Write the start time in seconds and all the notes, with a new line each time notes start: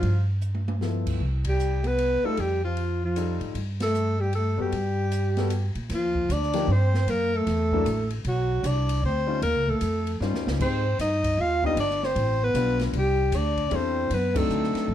Already playing: F3 F4
0.03 G2, kick, ride
0.41 hi-hat pedal
0.55 high tom
0.68 high tom
0.81 F3 B3 E4 A4, snare
1.06 kick, crash
1.20 C2, kick
1.45 G3, kick, ride
1.49 G4
1.59 hi-hat pedal
1.84 B3 B4, ride
1.98 ride
2.23 G3 A3 D#4 F4 A4, muted upright bass stroke
2.37 F2 G3 G4, kick, ride
2.64 F3 F4
2.77 ride
3.05 F3 F4
3.16 G3 D#4 F4 A4, hi-hat pedal, ride
3.40 G#2, ride
3.55 G2, kick, ride
3.80 A3 A4, snare, ride
3.94 hi-hat pedal
4.20 G3 G4
4.33 A3 A4, ride
4.57 F#2 G3 B3 F#4 A4
4.61 G4
4.72 G2, kick, ride
5.12 hi-hat pedal, ride
5.37 G3 B3 F#4 A4, snare, ride
5.50 hi-hat pedal, ride
5.75 A#2, ride
5.89 D#2 F3, kick, snare, ride
5.94 F4
6.15 kick
6.29 D2 D4 D5, kick, hi-hat pedal, ride
6.43 snare
6.53 F3 A#3 D4 D#4 G4, snare, ride
6.68 G2 C4, kick
6.72 C5
6.94 snare
7.07 F#2 A#3 A#4, kick, ride
7.34 A3 A4
7.47 E2, kick, snare, ride
7.72 F#3 A#3 D4 E4 A4, kick
7.85 A1, hi-hat pedal, ride
8.10 ride
8.24 B1 F#3 F#4, kick, ride
8.63 C2 D4 D5, kick, hi-hat pedal, ride
8.89 ride
9.03 D2 C4 C5, kick
9.27 G3 C#4 D#4 F4 C5
9.42 D#2 A#3 A#4, kick, ride
9.55 C#2
9.67 A#1 A3 A4, kick
9.81 F2, kick, hi-hat pedal, ride
10.07 ride
10.20 G2 G3 C#4 D#4 F4 C5, snare
10.33 D#2, snare
10.46 C#2, snare
10.59 G#2 G#3 C4 D#4 G4 C5, kick, crash
10.99 G2 D#4 D#5, kick, snare, hi-hat pedal, ride
11.24 kick, ride
11.37 D#2 F4 F5, kick
11.63 G3 B3 D4 D#4 F4 G4 D#5, kick
11.76 G1 D4 D5, kick, ride
11.90 snare
12.03 C4 C5, snare
12.16 A1, kick, ride
12.43 B3 B4
12.54 B1 G3 B3 D4 F4 B4, kick, hi-hat pedal, ride
12.79 snare, ride
12.93 C2 G3, kick, ride
12.98 G4
13.32 D2 D4, kick, hi-hat pedal, ride
13.36 D5
13.57 kick, ride
13.71 E2 G3 C4 D4 E4 A4, kick, ride
13.75 C5
14.10 F#2 B3 B4, kick, ride
14.34 F#3 A3 C4 D4 D#4 A4, kick, crash
14.49 D2, hi-hat pedal
14.63 snare
14.74 muted upright bass stroke, snare, ride
14.88 F#2, mid tom